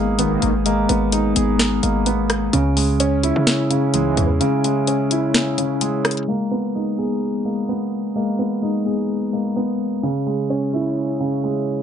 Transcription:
0.00 0.39 G#1 loud
0.00 0.64 G#3 medium
0.00 0.66 A#3 loud
0.00 0.17 B3 medium
0.00 0.89 B3 medium
0.00 0.42 D#4 medium
0.00 0.66 G#4 medium
0.19 0.53 B1 medium
0.19 0.53 D#3 loud
0.19 0.53 A#3 loud
0.19 0.87 B3 medium
0.19 closed hi-hat medium
0.42 0.87 G#1 loud
0.42 closed hi-hat medium
0.66 1.11 G#3 loud
0.66 1.82 A#3 loud
0.66 closed hi-hat medium
0.89 1.34 G#1 loud
0.89 2.05 B3 medium
0.89 closed hi-hat medium
1.12 1.82 G#3 medium
1.12 2.30 D#4 medium
1.12 closed hi-hat medium
1.35 1.81 G#1 loud
1.35 2.53 B3 medium
1.35 2.53 G#4 medium
1.35 closed hi-hat medium
1.59 snare loud
1.59 closed hi-hat medium
1.83 2.50 G#1 loud
1.83 2.53 G#3 medium
1.83 2.53 A#3 medium
1.83 closed hi-hat medium
2.06 2.53 B3 medium
2.06 closed hi-hat medium
2.30 cross-stick loud
2.30 closed hi-hat medium
2.53 3.33 C#2 loud
2.53 3.69 C#3 loud
2.53 2.99 C#4 loud
2.53 closed hi-hat medium
2.77 3.92 G#3 medium
2.77 open hi-hat medium
3.00 4.17 C#4 loud
3.00 3.69 C#4 medium
3.00 closed hi-hat medium
3.23 4.64 E4 medium
3.23 4.41 E4 medium
3.23 closed hi-hat medium
3.36 4.14 C#3 loud
3.47 snare loud
3.47 closed hi-hat medium
3.70 4.39 C#3 medium
3.70 4.39 C#4 medium
3.70 closed hi-hat medium
3.94 4.28 C#2 loud
3.94 4.28 G#2 loud
3.94 4.28 E3 loud
3.94 4.63 G#3 medium
3.94 closed hi-hat medium
4.17 4.41 E2 loud
4.17 closed hi-hat medium
4.41 5.57 C#3 loud
4.41 4.86 C#4 medium
4.41 closed hi-hat medium
4.64 5.80 G#3 medium
4.64 closed hi-hat medium
4.87 5.57 C#4 medium
4.87 6.05 C#4 medium
4.87 closed hi-hat medium
5.11 6.28 E4 medium
5.11 closed hi-hat medium
5.34 snare loud
5.34 closed hi-hat medium
5.58 6.28 C#3 medium
5.58 6.28 C#4 medium
5.58 closed hi-hat medium
5.81 6.28 G#3 medium
5.81 closed hi-hat medium
6.05 cross-stick loud
6.05 closed hi-hat medium
6.11 closed hi-hat medium
6.17 closed hi-hat medium
6.23 closed hi-hat medium
6.28 6.74 G#3 loud
6.28 7.44 A#3 medium
6.51 7.67 B3 medium
6.75 7.44 G#3 medium
6.75 7.92 D#4 medium
6.99 8.39 B3 medium
6.99 8.16 G#4 medium
7.45 8.14 G#3 medium
7.45 8.14 A#3 medium
7.69 8.37 B3 medium
8.16 8.61 G#3 medium
8.16 9.32 A#3 medium
8.39 9.55 B3 medium
8.62 9.32 G#3 medium
8.62 9.80 D#4 medium
8.85 10.03 B3 medium
8.85 10.03 G#4 medium
9.33 10.03 G#3 medium
9.33 10.03 A#3 medium
9.56 10.03 B3 medium
10.03 11.19 C#3 loud
10.03 10.49 C#4 medium
10.26 11.42 G#3 medium
10.50 11.67 C#4 medium
10.50 11.19 C#4 medium
10.73 11.83 E4 medium
11.20 11.83 C#3 medium
11.20 11.83 C#4 medium
11.44 11.83 G#3 medium

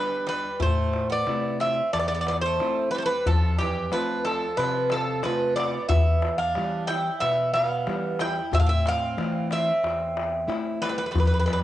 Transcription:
0.00 0.25 G3 medium
0.00 0.47 G3 soft
0.00 0.48 B3 soft
0.00 0.48 D4 medium
0.00 0.25 B4 medium
0.26 0.58 G3 medium
0.26 0.59 B4 medium
0.26 darbuka tek medium
0.43 darbuka tek soft
0.60 1.25 A2 medium
0.60 1.07 A3 medium
0.60 1.08 C5 loud
0.60 darbuka dum medium
0.77 darbuka tek soft
0.93 darbuka tek medium
1.10 1.56 B3 medium
1.10 1.61 D5 medium
1.27 1.80 C3 soft
1.27 1.80 A3 medium
1.27 1.81 E4 medium
1.27 darbuka tek medium
1.60 1.91 C4 medium
1.60 1.93 E5 medium
1.60 darbuka tek medium
1.93 2.58 E2 medium
1.93 2.00 A3 medium
1.93 1.98 D5 medium
1.93 darbuka tek medium
1.99 2.07 B3 medium
1.99 2.07 D5 medium
2.08 2.15 B3 medium
2.08 2.13 D5 medium
2.14 2.21 B3 medium
2.14 2.20 D5 medium
2.21 2.29 B3 medium
2.21 2.27 D5 medium
2.27 2.36 D5 medium
2.27 darbuka tek medium
2.31 2.37 B3 medium
2.41 2.90 C5 loud
2.45 2.91 A3 medium
2.59 3.13 A3 medium
2.59 3.13 C4 soft
2.59 3.13 E4 medium
2.59 darbuka tek medium
2.91 3.00 G3 medium
2.91 2.98 B4 medium
2.98 3.05 C5 medium
3.02 3.07 A3 medium
3.02 3.26 B4 medium
3.07 3.25 G3 medium
3.07 darbuka tek soft
3.26 3.91 F2 medium
3.26 3.58 F3 medium
3.26 3.57 A4 loud
3.26 darbuka dum medium
3.43 darbuka tek soft
3.58 3.91 E3 medium
3.58 3.90 G4 medium
3.58 darbuka tek medium
3.76 darbuka tek soft
3.91 4.24 F3 medium
3.91 4.45 A3 medium
3.91 4.45 C4 soft
3.91 4.45 F4 medium
3.91 4.23 B4 medium
3.91 darbuka tek medium
4.09 darbuka tek soft
4.25 4.57 F3 medium
4.25 4.56 A4 medium
4.25 darbuka tek medium
4.41 darbuka tek soft
4.57 5.22 C3 medium
4.57 4.90 F3 medium
4.57 4.92 B4 medium
4.57 darbuka tek medium
4.74 darbuka tek soft
4.90 5.23 F3 medium
4.90 5.22 A4 medium
4.90 darbuka tek medium
5.07 darbuka tek soft
5.23 5.78 C3 soft
5.23 5.55 F3 medium
5.23 5.77 A3 soft
5.23 5.78 F4 medium
5.23 5.55 B4 medium
5.23 darbuka tek medium
5.40 darbuka tek soft
5.56 5.88 B3 medium
5.56 5.87 D5 medium
5.56 darbuka tek medium
5.74 darbuka tek soft
5.89 6.54 E2 medium
5.89 6.36 B3 medium
5.89 6.38 E5 loud
5.89 darbuka dum loud
6.06 darbuka tek soft
6.22 darbuka tek medium
6.38 6.85 D4 medium
6.38 6.85 F5 loud
6.55 7.09 E3 medium
6.55 7.09 G3 medium
6.55 7.09 B3 soft
6.55 darbuka tek medium
6.87 7.19 E4 medium
6.87 7.20 G5 loud
6.87 darbuka tek medium
7.20 7.86 B2 medium
7.20 7.52 B3 medium
7.20 7.52 E5 loud
7.20 darbuka tek medium
7.54 8.17 B3 medium
7.54 8.20 F5 loud
7.54 darbuka tek medium
7.87 8.40 E3 medium
7.87 8.40 G3 medium
7.87 8.40 B3 soft
7.87 darbuka tek medium
8.19 8.51 E4 medium
8.19 8.51 G5 loud
8.19 darbuka tek medium
8.37 darbuka tek soft
8.52 9.16 A2 medium
8.52 8.59 C4 medium
8.52 8.59 E5 loud
8.52 darbuka dum loud
8.60 8.66 D4 medium
8.60 8.66 F5 medium
8.66 8.85 C4 medium
8.66 8.86 E5 loud
8.66 darbuka tek soft
8.86 9.48 C4 medium
8.86 9.49 F5 loud
8.86 darbuka tek medium
9.17 9.71 E3 medium
9.17 9.70 A3 medium
9.17 9.70 C4 soft
9.17 darbuka tek medium
9.51 10.78 C4 medium
9.51 10.79 E5 loud
9.51 darbuka tek medium
9.83 10.47 E2 medium
9.83 darbuka tek medium
10.17 darbuka tek medium
10.48 11.00 A3 medium
10.48 11.01 C4 soft
10.48 11.01 E4 medium
10.48 darbuka tek medium
10.82 10.89 G3 medium
10.82 10.88 B4 medium
10.82 darbuka tek medium
10.89 10.96 G3 medium
10.89 10.96 B4 medium
10.98 11.02 G3 medium
10.98 11.03 B4 medium
10.98 darbuka tek soft
11.03 11.10 G3 soft
11.03 11.10 B4 medium
11.11 11.64 F2 medium
11.11 11.17 G3 medium
11.11 11.17 B4 medium
11.15 11.24 G3 soft
11.15 darbuka dum medium
11.20 11.25 B4 medium
11.26 11.31 G3 medium
11.26 11.32 B4 medium
11.32 11.38 G3 soft
11.32 11.38 B4 medium
11.32 darbuka tek soft
11.40 11.45 G3 medium
11.40 11.45 B4 medium
11.46 11.52 G3 medium
11.46 11.52 B4 medium
11.46 darbuka tek medium
11.53 11.59 G3 medium
11.53 11.59 B4 medium

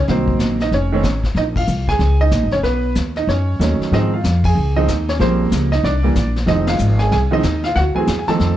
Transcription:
0.08 0.38 C2 medium
0.08 0.56 D#3 medium
0.08 0.57 F#3 medium
0.08 0.57 A#3 medium
0.08 0.57 C4 medium
0.08 0.39 C5 medium
0.08 brush sweep soft
0.08 snare soft
0.28 kick medium
0.39 0.71 A#1 medium
0.39 snare medium
0.39 hi-hat pedal medium
0.60 0.73 D#4 medium
0.60 0.74 D#5 medium
0.60 snare soft
0.72 1.02 F1 medium
0.72 0.93 C#4 medium
0.72 1.22 C#5 medium
0.72 brush sweep soft
0.72 snare soft
0.92 1.03 D#3 medium
0.92 1.04 A3 medium
0.92 1.04 C4 medium
0.92 1.04 C#4 medium
1.03 1.34 A1 medium
1.03 snare medium
1.03 hi-hat pedal soft
1.24 kick soft
1.24 snare soft
1.35 1.67 A#1 medium
1.35 1.43 D#4 medium
1.35 1.42 D#5 medium
1.35 brush sweep soft
1.35 snare soft
1.56 1.87 F4 medium
1.56 1.87 F5 medium
1.56 kick medium
1.56 crash medium
1.67 1.99 C2 medium
1.67 hi-hat pedal medium
1.88 2.19 G#4 medium
1.88 2.22 G#5 loud
1.88 kick medium
1.88 snare soft
1.99 2.31 C#2 medium
1.99 brush sweep soft
1.99 snare soft
2.21 2.51 D#4 medium
2.21 2.50 D#5 loud
2.31 2.42 A#1 medium
2.31 snare medium
2.31 hi-hat pedal medium
2.42 2.52 G#1 medium
2.51 2.63 F1 medium
2.51 2.59 C#4 medium
2.51 2.57 C#5 medium
2.51 snare soft
2.63 2.95 B1 medium
2.63 2.95 B3 medium
2.63 2.94 B4 medium
2.63 brush sweep soft
2.63 snare soft
2.95 3.27 D#2 medium
2.95 snare medium
2.95 hi-hat pedal medium
3.16 3.29 D#4 medium
3.16 3.29 D#5 medium
3.16 snare soft
3.27 3.59 F#2 medium
3.27 3.60 C#4 medium
3.27 3.77 C#5 medium
3.27 brush sweep soft
3.27 snare soft
3.59 3.78 D#2 medium
3.59 3.91 D#3 medium
3.59 3.93 F#3 soft
3.59 3.93 A3 soft
3.59 3.93 C#4 medium
3.59 snare medium
3.59 hi-hat pedal medium
3.80 muted upright bass stroke soft
3.80 snare soft
3.91 4.23 G#2 medium
3.91 4.10 D#3 medium
3.91 4.10 F3 medium
3.91 4.11 G#3 medium
3.91 4.11 C4 medium
3.91 4.00 D#4 medium
3.91 3.99 D#5 medium
3.91 brush sweep soft
3.91 snare soft
4.14 4.44 F4 medium
4.14 4.46 F5 medium
4.24 4.54 F2 medium
4.24 snare medium
4.24 hi-hat pedal medium
4.44 4.76 G#4 medium
4.44 4.75 G#5 medium
4.44 kick medium
4.44 crash medium
4.55 4.87 C#2 medium
4.55 brush sweep soft
4.76 4.87 D#3 medium
4.76 4.87 F3 medium
4.76 4.88 G#3 medium
4.76 4.88 C4 medium
4.76 5.07 D#4 medium
4.76 5.09 D#5 medium
4.88 5.19 D#2 medium
4.88 snare medium
4.88 hi-hat pedal medium
5.09 5.16 C#4 medium
5.09 5.14 C#5 medium
5.09 snare soft
5.19 5.51 A#1 medium
5.19 5.68 C#3 medium
5.19 5.68 F3 medium
5.19 5.69 G3 medium
5.19 5.69 A#3 medium
5.19 5.52 C4 medium
5.19 5.50 C5 medium
5.19 brush sweep soft
5.19 snare soft
5.52 5.83 C#2 medium
5.52 snare medium
5.52 hi-hat pedal medium
5.72 5.84 D#4 medium
5.72 5.85 D#5 medium
5.72 snare soft
5.83 6.15 C2 medium
5.83 6.33 D4 medium
5.83 6.33 D5 medium
5.83 brush sweep medium
5.83 snare soft
6.03 6.14 D3 medium
6.03 6.15 E3 medium
6.03 6.15 G3 medium
6.03 6.15 A#3 medium
6.15 6.46 A#1 medium
6.15 snare medium
6.15 hi-hat pedal medium
6.36 snare soft
6.46 6.79 F1 medium
6.46 6.95 D#3 soft
6.46 6.96 F3 medium
6.46 6.96 G#3 soft
6.46 6.96 C4 medium
6.46 6.67 D#5 medium
6.46 brush sweep soft
6.46 snare soft
6.51 6.68 D#4 medium
6.67 6.98 F4 medium
6.67 7.01 F5 medium
6.67 snare medium
6.67 ride medium
6.79 7.11 G#1 medium
6.79 hi-hat pedal medium
6.99 7.12 G#4 medium
6.99 7.11 G#5 medium
6.99 snare soft
7.11 7.43 C2 medium
7.11 7.19 G#4 medium
7.11 7.17 G#5 medium
7.11 brush sweep soft
7.11 snare soft
7.31 7.42 D#3 medium
7.31 7.42 F3 medium
7.31 7.43 G#3 medium
7.31 7.43 C4 medium
7.31 7.66 D#5 medium
7.35 7.63 D#4 medium
7.43 7.75 D#2 medium
7.43 snare medium
7.43 hi-hat pedal soft
7.63 7.76 F4 medium
7.63 7.76 F5 medium
7.63 snare soft
7.75 7.94 D2 medium
7.75 7.83 F#4 medium
7.75 7.81 F#5 loud
7.75 brush sweep medium
7.75 snare soft
7.95 8.06 E3 medium
7.95 8.06 F#3 medium
7.95 8.07 A3 medium
7.95 8.07 C4 medium
7.95 8.19 G#4 medium
7.95 8.18 G#5 medium
7.95 muted upright bass stroke soft
8.07 8.26 E2 medium
8.07 snare medium
8.07 hi-hat pedal medium
8.19 8.28 G#5 medium
8.27 8.57 D#3 medium
8.27 8.57 F3 medium
8.27 8.57 A3 medium
8.27 8.57 C4 medium
8.27 8.57 A4 medium
8.27 8.57 A5 loud
8.27 muted upright bass stroke soft
8.27 snare soft
8.39 8.57 F2 medium
8.39 brush sweep medium
8.39 snare soft

